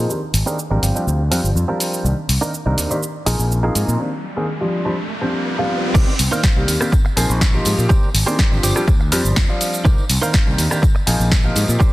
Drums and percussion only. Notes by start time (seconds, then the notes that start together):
0.10 shaker
0.34 open hi-hat, shaker
0.47 shaker
0.59 shaker
0.83 open hi-hat, shaker
0.96 shaker
1.08 shaker
1.32 open hi-hat, shaker
1.45 shaker
1.57 shaker
1.80 open hi-hat, shaker
1.94 shaker
2.06 shaker
2.29 open hi-hat, shaker
2.43 shaker
2.54 shaker
2.78 open hi-hat, shaker
2.91 shaker
3.03 shaker
3.27 open hi-hat, shaker
3.40 shaker
3.52 shaker
3.75 open hi-hat, shaker
3.89 shaker
5.95 kick, tambourine, crash, shaker
6.08 tambourine
6.19 open hi-hat, tambourine, shaker
6.32 tambourine, shaker
6.43 kick, snare, tambourine, shaker
6.56 tambourine
6.68 open hi-hat, tambourine, shaker
6.81 cross-stick, tambourine, shaker
6.92 kick, tambourine, shaker
7.05 tambourine
7.17 open hi-hat, tambourine, shaker
7.29 tambourine, shaker
7.41 kick, snare, tambourine, shaker
7.54 tambourine
7.65 open hi-hat, tambourine, shaker
7.78 tambourine, shaker
7.89 kick, tambourine, shaker
8.03 tambourine
8.15 open hi-hat, tambourine, shaker
8.27 tambourine, shaker
8.39 kick, snare, tambourine, shaker
8.52 tambourine
8.63 open hi-hat, tambourine, shaker
8.76 cross-stick, tambourine, shaker
8.88 kick, tambourine, shaker
9.01 tambourine
9.12 open hi-hat, tambourine, shaker
9.25 tambourine, shaker
9.36 kick, snare, tambourine, shaker
9.49 tambourine
9.61 open hi-hat, tambourine, shaker
9.73 tambourine, shaker
9.85 kick, tambourine, shaker
9.98 tambourine
10.10 open hi-hat, tambourine, shaker
10.22 tambourine, shaker
10.33 kick, snare, tambourine, shaker
10.47 tambourine
10.58 open hi-hat, tambourine, shaker
10.71 cross-stick, tambourine, shaker
10.83 kick, tambourine, shaker
10.95 tambourine
11.07 open hi-hat, tambourine, shaker
11.20 tambourine, shaker
11.32 kick, snare, tambourine, shaker
11.43 tambourine
11.56 open hi-hat, tambourine, shaker
11.68 tambourine, shaker
11.80 kick, tambourine, shaker